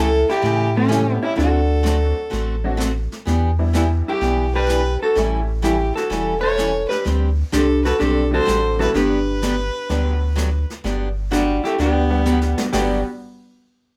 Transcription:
Already playing: sub bass C#2, hollow-body jazz guitar E4, fiddle A4
0.00 hollow-body jazz guitar A4
0.29 hollow-body jazz guitar E4 G4, fiddle G4, snare
0.42 sub bass A2, steel-string acoustic guitar C#3 E3 A3 C#4 G4, brush sweep, snare
0.77 hollow-body jazz guitar A3 C#4, fiddle C#4
0.88 steel-string acoustic guitar C#3 E3 A3 C#4 G4, honky-tonk piano G3 A3 C#4 E4 G4, snare, hi-hat pedal
1.23 hollow-body jazz guitar C#4 E4, fiddle E4
1.35 sub bass D2, steel-string acoustic guitar D3 A3 C4 F#4 A4, hollow-body jazz guitar D4 F#4, fiddle A4, brush sweep, snare
1.83 steel-string acoustic guitar D3 A3 C4 F#4 A4, honky-tonk piano F#3 A3 C4 D4 F#4, snare, hi-hat pedal
2.30 sub bass A1, steel-string acoustic guitar D3 A3 C4 F#4 A4, brush sweep, snare
2.64 honky-tonk piano F#3 A3 C4 D4 F#4
2.77 steel-string acoustic guitar D3 A3 C4 F#4 A4, snare, hi-hat pedal
3.12 snare
3.25 sub bass E2, steel-string acoustic guitar E3 B3 D4 G4, brush sweep, snare
3.59 honky-tonk piano E3 G3 B3 D4 E4
3.73 steel-string acoustic guitar E3 B3 D4 G4, hollow-body jazz guitar B3 E4, fiddle E4, snare, hi-hat pedal
4.08 hollow-body jazz guitar E4 G4, fiddle G4
4.21 sub bass B1, steel-string acoustic guitar E3 B3 D4 G4, brush sweep, snare
4.55 hollow-body jazz guitar G4 B4, fiddle B4
4.67 steel-string acoustic guitar E3 B3 D4 G4, snare, hi-hat pedal
5.01 hollow-body jazz guitar F#4 A4, fiddle A4
5.15 sub bass A1, steel-string acoustic guitar E3 G3 C#4 E4 A4, honky-tonk piano E3 G3 A3 C#4 E4, brush sweep, snare
5.62 steel-string acoustic guitar E3 G3 C#4 E4 A4, hollow-body jazz guitar E4 G4, fiddle G4, snare, hi-hat pedal
5.95 hollow-body jazz guitar F#4 A4, fiddle A4, snare
6.10 sub bass E1, steel-string acoustic guitar E3 G3 C#4 E4 A4, brush sweep, snare
6.40 hollow-body jazz guitar A4 C#5, fiddle C#5
6.58 steel-string acoustic guitar E3 G3 C#4 E4 A4, snare, hi-hat pedal
6.89 hollow-body jazz guitar G4 B4, fiddle B4, snare
7.05 sub bass D2, steel-string acoustic guitar D3 G3 C4 D4 G4, brush sweep, snare
7.52 sub bass C2, steel-string acoustic guitar D3 G3 C4 D4 G4, hollow-body jazz guitar D4 G4, fiddle A4, snare, hi-hat pedal
7.85 hollow-body jazz guitar F#4 A4, fiddle B4, snare
7.99 sub bass B1, steel-string acoustic guitar D3 G3 C4 D4 G4, hollow-body jazz guitar D4 G4, fiddle A4, brush sweep, snare
8.31 honky-tonk piano D3 G3 A3 C4 D4, hollow-body jazz guitar F#4 A4, fiddle C5
8.45 sub bass A1, steel-string acoustic guitar D3 G3 C4 D4 G4, snare, hi-hat pedal
8.79 honky-tonk piano D3 F#3 G3 B3 E4, hollow-body jazz guitar F#4 A4, fiddle B4, snare
8.94 sub bass G1, steel-string acoustic guitar D3 F#3 B3 D4 G4, hollow-body jazz guitar D4 G4, fiddle B4, brush sweep, snare
9.42 steel-string acoustic guitar D3 F#3 B3 D4 G4, snare, hi-hat pedal
9.89 sub bass D2, honky-tonk piano D3 F#3 G3 B3 D4, steel-string acoustic guitar D3 F#3 B3 D4 G4, brush sweep, snare
10.35 steel-string acoustic guitar D3 F#3 B3 D4 G4, snare, hi-hat pedal
10.70 snare
10.84 sub bass G1, steel-string acoustic guitar D3 F#3 B3 D4 G4, brush sweep, snare
11.31 steel-string acoustic guitar D3 F#3 B3 D4 G4, fiddle G3, hollow-body jazz guitar D4 F#4, snare, hi-hat pedal
11.64 fiddle A3, hollow-body jazz guitar E4 G4, snare
11.78 sub bass D2, steel-string acoustic guitar D3 F#3 B3 D4 G4, fiddle B3, hollow-body jazz guitar D4 G4, brush sweep, snare
12.10 honky-tonk piano G3 B3 D4 F#5
12.26 steel-string acoustic guitar D3 F#3 B3 D4 G4, hi-hat pedal
12.41 snare
12.57 honky-tonk piano G3 B3 D4 F#4, snare
12.73 sub bass G1, steel-string acoustic guitar G2 D3 F#3 B3 D4 G4, honky-tonk piano G3 B3 D4 F#4, fiddle B3, hollow-body jazz guitar G4, snare, open hi-hat

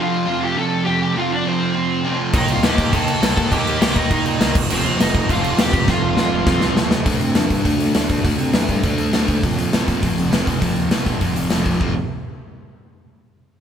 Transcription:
Already playing: distorted electric guitar F2 C3 F3
0.00 lead electric guitar F4 F5
0.26 distorted electric guitar F2 C3 F3
0.43 lead electric guitar G4 G5
0.56 distorted electric guitar F2 C3 F3, lead electric guitar A4 A5
0.84 distorted electric guitar F2 C3 F3, lead electric guitar G4 G5
1.02 lead electric guitar G4 G5
1.15 distorted electric guitar F2 C3 F3, lead electric guitar F4 F5
1.32 lead electric guitar D4 D5
1.45 distorted electric guitar F2 C3 F3, lead electric guitar C4 C5
1.74 distorted electric guitar F2 C3 F3
2.04 distorted electric guitar F2 C3 F3
2.33 picked electric bass D#2, distorted electric guitar D#3 A#3 D#4, lead electric guitar D#4, kick, crash
2.38 lead electric guitar D#5
2.48 picked electric bass C2, lead electric guitar F4 F5, crash
2.63 picked electric bass D#2, distorted electric guitar D#3 A#3 D#4, lead electric guitar G4 G5, snare, crash
2.78 kick, crash
2.93 picked electric bass D#2, distorted electric guitar D#3 A#3 D#4, lead electric guitar A4 A5, kick, crash
3.08 crash
3.22 picked electric bass C2, distorted electric guitar D#3 A#3 D#4, snare, crash
3.37 picked electric bass D#2, kick, crash
3.52 picked electric bass D#2, distorted electric guitar D#3 A#3 D#4, lead electric guitar G4 G5, kick, crash
3.66 picked electric bass D#2, crash
3.81 picked electric bass C2, distorted electric guitar D#3 A#3 D#4, lead electric guitar G4 G5, snare, crash
3.95 picked electric bass D#2, lead electric guitar D#4 D#5, kick, crash
4.10 distorted electric guitar D#3 A#3 D#4, picked electric bass D#3, lead electric guitar D#4 D#5, kick, crash
4.26 picked electric bass A#2, crash
4.39 picked electric bass C2, distorted electric guitar D#3 A#3 D#4, snare, crash
4.55 picked electric bass F1, kick, crash
4.70 picked electric bass F1, distorted electric guitar F2 C3 F3, lead electric guitar C4 C5, crash
4.85 picked electric bass D#2, crash
4.99 picked electric bass F1, distorted electric guitar F2 C3 F3, lead electric guitar D#4 D#5, snare, crash
5.15 kick, crash
5.29 picked electric bass F1, distorted electric guitar F2 C3 F3, lead electric guitar F4 F5, kick, crash
5.44 crash
5.58 picked electric bass D#2, distorted electric guitar F2 C3 F3, lead electric guitar G4 G5, snare, crash
5.73 picked electric bass F1, kick, crash
5.88 picked electric bass F1, distorted electric guitar F2 C3 F3, lead electric guitar F4 F5, kick, snare
6.02 picked electric bass F1
6.17 picked electric bass D#2, distorted electric guitar F2 C3 F3, snare
6.32 picked electric bass F1
6.46 distorted electric guitar F2 C3 F3, picked electric bass F2, kick, snare
6.61 picked electric bass C2, snare
6.76 picked electric bass D#2, distorted electric guitar F2 C3 F3, snare
6.90 picked electric bass D#2, snare
7.05 picked electric bass D2, distorted electric guitar D3 A3 D4, kick, open hi-hat
7.21 picked electric bass C3, open hi-hat
7.35 picked electric bass F2, distorted electric guitar D3 A3 D4, snare, open hi-hat
7.50 picked electric bass G2, kick, open hi-hat
7.64 picked electric bass D2, distorted electric guitar D3 A3 D4, kick, open hi-hat
7.80 picked electric bass D2, open hi-hat
7.94 picked electric bass D2, distorted electric guitar D3 A3 D4, snare, open hi-hat
8.10 picked electric bass D2, kick, open hi-hat
8.24 picked electric bass D2, distorted electric guitar D3 A3 D4, kick, open hi-hat
8.39 picked electric bass C3, open hi-hat
8.54 picked electric bass F2, distorted electric guitar D3 A3 D4, snare, open hi-hat
8.69 picked electric bass G2, kick, open hi-hat
8.83 picked electric bass D2, distorted electric guitar D3 A3 D4, kick, open hi-hat
8.98 picked electric bass D2, open hi-hat
9.13 picked electric bass D2, distorted electric guitar D3 A3 D4, snare, open hi-hat
9.28 picked electric bass D2, kick, open hi-hat
9.43 picked electric bass F1, distorted electric guitar F2 C3 F3, kick, open hi-hat
9.58 picked electric bass D#2, open hi-hat
9.72 picked electric bass A1, distorted electric guitar F2 C3 F3, snare, open hi-hat
9.88 picked electric bass A#1, kick, open hi-hat
10.03 picked electric bass F1, distorted electric guitar F2 C3 F3, kick, open hi-hat
10.17 picked electric bass F1, open hi-hat
10.31 picked electric bass F1, distorted electric guitar F2 C3 F3, snare, open hi-hat
10.47 picked electric bass F1, kick, open hi-hat
10.61 picked electric bass F1, distorted electric guitar F2 C3 F3, kick, open hi-hat
10.76 picked electric bass D#2, open hi-hat
10.91 picked electric bass A1, distorted electric guitar F2 C3 F3, snare, open hi-hat
11.06 picked electric bass A#1, kick, open hi-hat
11.21 picked electric bass F1, distorted electric guitar F2 C3 F3, kick, open hi-hat
11.36 picked electric bass F1, open hi-hat
11.50 picked electric bass F1, distorted electric guitar F2 C3 F3, snare, open hi-hat
11.66 picked electric bass F1, kick, open hi-hat
11.81 picked electric bass F1, distorted electric guitar F2 C3 F3, kick

